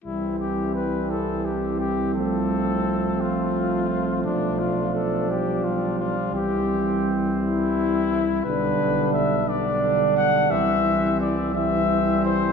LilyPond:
<<
  \new Staff \with { instrumentName = "Trumpet" } { \time 6/8 \key c \major \tempo 4. = 57 e'8 g'8 b'8 a'8 g'8 g'8 | a'4. f'4. | d'8 f'8 a'8 g'8 f'8 f'8 | g'4 r8 e'4. |
\key g \major b'4 e''8 d''4 fis''8 | e''4 d''8 e''4 c''8 | }
  \new Staff \with { instrumentName = "Flugelhorn" } { \time 6/8 \key c \major c'2.~ | c'2. | d'2. | c'2. |
\key g \major d'4. d'4. | c'4. c'4. | }
  \new Staff \with { instrumentName = "French horn" } { \clef bass \time 6/8 \key c \major g2. | a2.~ | a4. g4.~ | g2. |
\key g \major g4. g4. | g4. g4. | }
  \new Staff \with { instrumentName = "Trombone" } { \clef bass \time 6/8 \key c \major e2. | f2.~ | f2. | e2. |
\key g \major d4. d4. | e4. e4. | }
  \new Staff \with { instrumentName = "Tuba" } { \clef bass \time 6/8 \key c \major c,2.~ | c,2. | b,,2. | c,2. |
\key g \major b,,2. | c,2. | }
>>